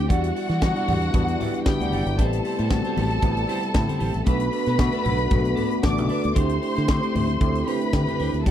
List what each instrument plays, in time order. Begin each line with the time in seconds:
Already playing: tine electric piano A3 C4 E4 F#4 G4
0.08 fingered electric bass E2, french horn section E3 G3 B3 D4 E4, tine electric piano G3 B3 D4 F#4, string section F#4 F#5, clean electric guitar G4 D5 F#5, kick, closed hi-hat
0.24 closed hi-hat
0.35 clean electric guitar G4 D5 F#5, open hi-hat
0.49 fingered electric bass E3, clean electric guitar G4 D5 F#5, snare, closed hi-hat
0.62 tine electric piano G3 B3 D4 F#4, kick, snare, high conga
0.76 clean electric guitar G4 D5 F#5, closed hi-hat
0.88 fingered electric bass E2, clean electric guitar G4 D5 F#5, open hi-hat, muted conga, low conga
1.02 muted clean electric guitar stroke, closed hi-hat
1.13 fingered electric bass E2, tine electric piano G3 B3 D4 F#4, kick, closed hi-hat, muted conga, low conga
1.28 muted clean electric guitar stroke, closed hi-hat
1.40 clean electric guitar G4 D5 F#5, open hi-hat, muted conga, low conga
1.54 muted clean electric guitar stroke, closed hi-hat
1.66 tine electric piano G3 B3 D4 G4, string section G4 G5, muted clean electric guitar stroke, kick, snare, high conga
1.80 fingered electric bass D2, clean electric guitar G4 D5 F#5, closed hi-hat, high conga
1.92 fingered electric bass F#1, clean electric guitar G4 D5 F#5, open hi-hat
2.06 fingered electric bass G1, closed hi-hat
2.18 fingered electric bass A1, french horn section C3 G3 A3, tine electric piano G3 B3 C4 E4, clean electric guitar E4 G4 C5, string section A4 A5, kick, closed hi-hat
2.33 closed hi-hat
2.45 clean electric guitar E4 G4 C5, open hi-hat
2.58 fingered electric bass A2, clean electric guitar E4 G4 C5, closed hi-hat
2.70 tine electric piano G3 B3 C4 F#4, muted clean electric guitar stroke, kick, snare, high conga
2.84 clean electric guitar E4 G4 C5, closed hi-hat
2.97 fingered electric bass A1, clean electric guitar E4 G4 C5, open hi-hat, muted conga, low conga
3.10 muted clean electric guitar stroke, closed hi-hat
3.22 fingered electric bass A1, tine electric piano G3 B3 C4 E4, kick, closed hi-hat, muted conga
3.37 muted clean electric guitar stroke, closed hi-hat
3.49 clean electric guitar E4 G4 C5, open hi-hat, muted conga
3.63 muted clean electric guitar stroke, closed hi-hat
3.74 fingered electric bass A2, tine electric piano G3 B3 C4 E4, muted clean electric guitar stroke, kick, snare, high conga
3.88 clean electric guitar E4 G4 C5, closed hi-hat, high conga
3.99 fingered electric bass A1, clean electric guitar E4 G4 C5, open hi-hat
4.14 fingered electric bass A1, muted clean electric guitar stroke, closed hi-hat
4.26 fingered electric bass B1, french horn section D3 B3, tine electric piano A3 B3 D4 F#4, clean electric guitar D4 A4 B4, string section B4 B5, kick, closed hi-hat
4.40 closed hi-hat
4.52 clean electric guitar D4 A4 B4, open hi-hat
4.66 fingered electric bass B2, clean electric guitar D4 A4 B4, snare, closed hi-hat
4.78 tine electric piano A3 B3 D4 F#4, muted clean electric guitar stroke, kick, snare, high conga
4.92 clean electric guitar D4 A4 B4, closed hi-hat
5.04 fingered electric bass B1, clean electric guitar D4 A4 B4, open hi-hat, muted conga, low conga
5.18 muted clean electric guitar stroke, closed hi-hat
5.30 fingered electric bass B1, tine electric piano A3 B3 D4 F#4, kick, closed hi-hat, muted conga, low conga
5.43 muted clean electric guitar stroke, closed hi-hat
5.56 clean electric guitar D4 A4 B4, open hi-hat, low conga
5.71 muted clean electric guitar stroke, closed hi-hat
5.83 fingered electric bass A1, tine electric piano A3 B3 D4 F#4, string section D5 D6, kick, snare, high conga
5.97 fingered electric bass B1, clean electric guitar D4 A4 B4, closed hi-hat, high conga
6.09 clean electric guitar D4 A4 B4, open hi-hat
6.23 fingered electric bass D2, muted clean electric guitar stroke, closed hi-hat, high conga
6.35 fingered electric bass D2, tine electric piano A3 C4 E4 F#4, french horn section C4 E4 G4, clean electric guitar D4 G4 C5, string section C5 C6, kick, closed hi-hat
6.43 tine electric piano G4
6.49 closed hi-hat
6.61 clean electric guitar D4 G4 C5, open hi-hat
6.75 fingered electric bass D3, clean electric guitar D4 G4 C5, snare, closed hi-hat
6.88 tine electric piano A3 C4 E4 G4, muted clean electric guitar stroke, kick, snare, high conga
7.01 clean electric guitar D4 G4 C5, closed hi-hat
7.13 fingered electric bass D2, clean electric guitar D4 G4 C5, open hi-hat, muted conga, low conga
7.28 muted clean electric guitar stroke, closed hi-hat
7.40 fingered electric bass D2, tine electric piano A3 C4 E4 G4, kick, closed hi-hat, muted conga
7.54 muted clean electric guitar stroke, closed hi-hat
7.66 clean electric guitar D4 G4 C5, string section B4 B5, open hi-hat, muted conga
7.81 muted clean electric guitar stroke, closed hi-hat
7.93 fingered electric bass D3, tine electric piano A3 C4 E4 G4, kick, snare, high conga
8.07 clean electric guitar D4 G4 C5, closed hi-hat, high conga
8.19 fingered electric bass D2, clean electric guitar D4 G4 C5, open hi-hat
8.33 fingered electric bass D2, muted clean electric guitar stroke, closed hi-hat
8.45 fingered electric bass E2, french horn section E3 G3 B3 D4 E4, tine electric piano G3 B3 D4 F#4, clean electric guitar G4 D5, string section A4 A5, kick, closed hi-hat